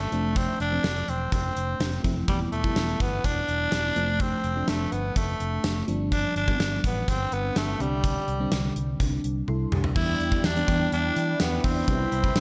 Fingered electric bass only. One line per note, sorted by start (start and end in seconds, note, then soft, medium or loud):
0.12 0.47 F1 medium
0.60 0.77 F1 medium
0.84 1.01 F1 medium
1.08 1.25 E1 medium
1.32 1.50 F1 medium
1.56 1.73 F1 medium
1.80 1.97 F1 medium
2.04 2.22 F1 medium
2.28 2.45 E1 medium
2.52 2.69 E1 medium
2.76 2.93 E1 medium
3.00 3.18 G1 medium
3.24 3.41 E1 medium
3.48 3.66 E1 medium
3.72 3.89 E1 loud
3.96 4.31 F1 medium
4.44 4.61 F1 loud
4.68 4.85 F1 medium
4.92 5.09 G1 medium
5.16 5.33 F1 medium
5.40 5.57 F1 medium
5.64 5.81 F1 loud
5.88 6.23 G1 medium
6.36 6.53 G1 loud
6.60 6.77 G1 loud
6.84 7.01 A1 medium
7.08 7.25 G1 loud
7.32 7.49 G1 medium
7.56 7.73 G1 medium
7.80 8.15 C2 medium
8.28 8.45 C2 medium
8.52 8.69 C2 medium
8.76 8.93 C2 medium
9.00 9.17 C2 medium
9.24 9.41 C2 medium
9.48 9.65 C2 medium
9.72 9.89 C2 medium
9.96 10.13 E2 loud
10.20 10.37 E2 medium
10.44 10.61 E2 loud
10.68 10.85 E2 medium
10.92 11.10 E2 medium
11.16 11.33 E3 medium
11.40 11.58 E2 loud
11.64 11.81 E2 medium
11.88 12.05 C2 medium
12.12 12.29 C2 medium
12.36 12.40 C2 medium